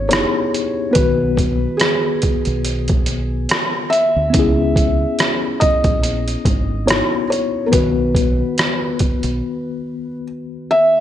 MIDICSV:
0, 0, Header, 1, 5, 480
1, 0, Start_track
1, 0, Key_signature, 4, "minor"
1, 0, Tempo, 845070
1, 545, Time_signature, 4, 2, 24, 8
1, 6250, End_track
2, 0, Start_track
2, 0, Title_t, "Felt piano"
2, 0, Program_c, 0, 0
2, 51, Note_on_c, 0, 73, 85
2, 527, Note_on_c, 0, 71, 94
2, 552, Note_off_c, 0, 73, 0
2, 1006, Note_on_c, 0, 68, 72
2, 1031, Note_off_c, 0, 71, 0
2, 2215, Note_on_c, 0, 76, 103
2, 2252, Note_off_c, 0, 68, 0
2, 3181, Note_on_c, 0, 75, 90
2, 3209, Note_off_c, 0, 76, 0
2, 3904, Note_on_c, 0, 73, 83
2, 3925, Note_off_c, 0, 75, 0
2, 4128, Note_off_c, 0, 73, 0
2, 4147, Note_on_c, 0, 73, 76
2, 4352, Note_on_c, 0, 70, 58
2, 4357, Note_off_c, 0, 73, 0
2, 4384, Note_on_c, 0, 71, 81
2, 4386, Note_off_c, 0, 70, 0
2, 5802, Note_off_c, 0, 71, 0
2, 6082, Note_on_c, 0, 76, 115
2, 6250, Note_off_c, 0, 76, 0
2, 6250, End_track
3, 0, Start_track
3, 0, Title_t, "Tine electric piano"
3, 0, Program_c, 1, 4
3, 0, Control_c, 1, 64, 127
3, 0, Note_on_c, 1, 68, 64
3, 52, Note_on_c, 1, 59, 43
3, 57, Note_off_c, 1, 68, 0
3, 62, Note_on_c, 1, 63, 42
3, 69, Note_on_c, 1, 64, 42
3, 79, Note_on_c, 1, 67, 38
3, 114, Note_off_c, 1, 67, 0
3, 116, Note_on_c, 1, 68, 47
3, 511, Note_off_c, 1, 59, 0
3, 518, Note_on_c, 1, 59, 59
3, 540, Note_on_c, 1, 51, 55
3, 544, Note_off_c, 1, 63, 0
3, 547, Note_off_c, 1, 64, 0
3, 554, Control_c, 1, 64, 0
3, 558, Note_on_c, 1, 66, 55
3, 571, Note_off_c, 1, 68, 0
3, 575, Note_on_c, 1, 71, 63
3, 668, Control_c, 1, 64, 127
3, 2429, Note_off_c, 1, 59, 0
3, 2440, Note_off_c, 1, 51, 0
3, 2441, Note_on_c, 1, 59, 61
3, 2449, Note_off_c, 1, 66, 0
3, 2457, Note_off_c, 1, 71, 0
3, 2460, Note_on_c, 1, 61, 54
3, 2472, Control_c, 1, 64, 0
3, 2475, Note_on_c, 1, 64, 52
3, 2495, Note_on_c, 1, 68, 63
3, 2556, Control_c, 1, 64, 127
3, 3871, Note_off_c, 1, 59, 0
3, 3880, Note_off_c, 1, 61, 0
3, 3888, Note_off_c, 1, 64, 0
3, 3896, Note_on_c, 1, 59, 43
3, 3897, Note_off_c, 1, 68, 0
3, 3905, Note_on_c, 1, 63, 41
3, 3915, Note_on_c, 1, 64, 41
3, 3925, Note_on_c, 1, 66, 49
3, 4356, Note_off_c, 1, 59, 0
3, 4363, Note_on_c, 1, 59, 62
3, 4381, Note_on_c, 1, 51, 50
3, 4385, Note_off_c, 1, 63, 0
3, 4390, Note_off_c, 1, 64, 0
3, 4391, Note_off_c, 1, 66, 0
3, 4392, Control_c, 1, 64, 0
3, 4398, Note_on_c, 1, 66, 53
3, 4419, Note_on_c, 1, 71, 65
3, 4487, Control_c, 1, 64, 127
3, 6250, Note_off_c, 1, 51, 0
3, 6250, Note_off_c, 1, 59, 0
3, 6250, Note_off_c, 1, 66, 0
3, 6250, Note_off_c, 1, 71, 0
3, 6250, End_track
4, 0, Start_track
4, 0, Title_t, "Fingered electric bass"
4, 0, Program_c, 2, 33
4, 0, Note_on_c, 2, 32, 80
4, 135, Note_off_c, 2, 32, 0
4, 545, Note_on_c, 2, 35, 110
4, 945, Note_off_c, 2, 35, 0
4, 1404, Note_on_c, 2, 35, 87
4, 1964, Note_off_c, 2, 35, 0
4, 2365, Note_on_c, 2, 38, 88
4, 2451, Note_off_c, 2, 38, 0
4, 2468, Note_on_c, 2, 37, 105
4, 2867, Note_off_c, 2, 37, 0
4, 3319, Note_on_c, 2, 34, 85
4, 3607, Note_off_c, 2, 34, 0
4, 3668, Note_on_c, 2, 32, 90
4, 3979, Note_off_c, 2, 32, 0
4, 4393, Note_on_c, 2, 35, 100
4, 4790, Note_off_c, 2, 35, 0
4, 5248, Note_on_c, 2, 35, 86
4, 5344, Note_off_c, 2, 35, 0
4, 6250, End_track
5, 0, Start_track
5, 0, Title_t, "Drums"
5, 61, Note_on_c, 9, 42, 81
5, 74, Note_on_c, 9, 37, 104
5, 118, Note_off_c, 9, 42, 0
5, 131, Note_off_c, 9, 37, 0
5, 309, Note_on_c, 9, 42, 59
5, 366, Note_off_c, 9, 42, 0
5, 540, Note_on_c, 9, 42, 89
5, 544, Note_on_c, 9, 36, 117
5, 597, Note_off_c, 9, 42, 0
5, 601, Note_off_c, 9, 36, 0
5, 780, Note_on_c, 9, 36, 91
5, 787, Note_on_c, 9, 42, 65
5, 837, Note_off_c, 9, 36, 0
5, 844, Note_off_c, 9, 42, 0
5, 1020, Note_on_c, 9, 42, 69
5, 1029, Note_on_c, 9, 37, 97
5, 1077, Note_off_c, 9, 42, 0
5, 1085, Note_off_c, 9, 37, 0
5, 1260, Note_on_c, 9, 42, 61
5, 1268, Note_on_c, 9, 36, 79
5, 1317, Note_off_c, 9, 42, 0
5, 1325, Note_off_c, 9, 36, 0
5, 1392, Note_on_c, 9, 42, 40
5, 1449, Note_off_c, 9, 42, 0
5, 1503, Note_on_c, 9, 42, 72
5, 1560, Note_off_c, 9, 42, 0
5, 1635, Note_on_c, 9, 42, 44
5, 1645, Note_on_c, 9, 36, 90
5, 1692, Note_off_c, 9, 42, 0
5, 1702, Note_off_c, 9, 36, 0
5, 1739, Note_on_c, 9, 42, 67
5, 1796, Note_off_c, 9, 42, 0
5, 1983, Note_on_c, 9, 42, 81
5, 1996, Note_on_c, 9, 37, 108
5, 2040, Note_off_c, 9, 42, 0
5, 2053, Note_off_c, 9, 37, 0
5, 2230, Note_on_c, 9, 42, 58
5, 2287, Note_off_c, 9, 42, 0
5, 2464, Note_on_c, 9, 42, 91
5, 2466, Note_on_c, 9, 36, 112
5, 2521, Note_off_c, 9, 42, 0
5, 2523, Note_off_c, 9, 36, 0
5, 2703, Note_on_c, 9, 36, 93
5, 2710, Note_on_c, 9, 42, 60
5, 2760, Note_off_c, 9, 36, 0
5, 2766, Note_off_c, 9, 42, 0
5, 2946, Note_on_c, 9, 42, 72
5, 2955, Note_on_c, 9, 37, 92
5, 3003, Note_off_c, 9, 42, 0
5, 3011, Note_off_c, 9, 37, 0
5, 3187, Note_on_c, 9, 42, 62
5, 3192, Note_on_c, 9, 36, 82
5, 3244, Note_off_c, 9, 42, 0
5, 3249, Note_off_c, 9, 36, 0
5, 3317, Note_on_c, 9, 42, 40
5, 3319, Note_on_c, 9, 36, 92
5, 3374, Note_off_c, 9, 42, 0
5, 3376, Note_off_c, 9, 36, 0
5, 3428, Note_on_c, 9, 42, 71
5, 3484, Note_off_c, 9, 42, 0
5, 3565, Note_on_c, 9, 42, 43
5, 3622, Note_off_c, 9, 42, 0
5, 3665, Note_on_c, 9, 36, 97
5, 3667, Note_on_c, 9, 42, 67
5, 3722, Note_off_c, 9, 36, 0
5, 3724, Note_off_c, 9, 42, 0
5, 3909, Note_on_c, 9, 42, 83
5, 3922, Note_on_c, 9, 37, 114
5, 3966, Note_off_c, 9, 42, 0
5, 3979, Note_off_c, 9, 37, 0
5, 4159, Note_on_c, 9, 42, 59
5, 4215, Note_off_c, 9, 42, 0
5, 4389, Note_on_c, 9, 42, 95
5, 4391, Note_on_c, 9, 36, 120
5, 4446, Note_off_c, 9, 42, 0
5, 4448, Note_off_c, 9, 36, 0
5, 4627, Note_on_c, 9, 36, 92
5, 4636, Note_on_c, 9, 42, 63
5, 4684, Note_off_c, 9, 36, 0
5, 4693, Note_off_c, 9, 42, 0
5, 4872, Note_on_c, 9, 42, 73
5, 4881, Note_on_c, 9, 37, 101
5, 4929, Note_off_c, 9, 42, 0
5, 4937, Note_off_c, 9, 37, 0
5, 5108, Note_on_c, 9, 42, 58
5, 5115, Note_on_c, 9, 36, 83
5, 5165, Note_off_c, 9, 42, 0
5, 5171, Note_off_c, 9, 36, 0
5, 5243, Note_on_c, 9, 42, 42
5, 5299, Note_off_c, 9, 42, 0
5, 6250, End_track
0, 0, End_of_file